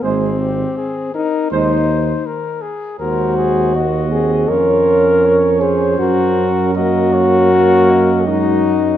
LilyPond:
<<
  \new Staff \with { instrumentName = "Flugelhorn" } { \time 4/4 \key aes \major \tempo 4 = 80 c''8 r4. c''8 r4. | \key ges \lydian c''4 ees''4 des''4 des''4 | bes'4 ees''8 des''8 des''8 ees''4. | }
  \new Staff \with { instrumentName = "Trumpet" } { \time 4/4 \key aes \major aes'8 g'8 aes'8 bes'8 c''4 bes'8 aes'8 | \key ges \lydian bes'8 aes'8 ges'4 f'4 des''8 c''8~ | c''8 r8 bes'8 bes'4. ges'4 | }
  \new Staff \with { instrumentName = "French horn" } { \time 4/4 \key aes \major c'4. ees'8 ees'4 r4 | \key ges \lydian ges'4. aes'8 bes'4. aes'8 | ges'4 ges'2 ees'4 | }
  \new Staff \with { instrumentName = "Trombone" } { \time 4/4 \key aes \major aes8 r4. aes8 r4. | \key ges \lydian aes4 bes8 c'8 des'2~ | des'4 bes4 bes4 aes8 ges8 | }
  \new Staff \with { instrumentName = "Tuba" } { \clef bass \time 4/4 \key aes \major aes,,4 r4 ees,4 r4 | \key ges \lydian ees,2 f,2 | ges,1 | }
>>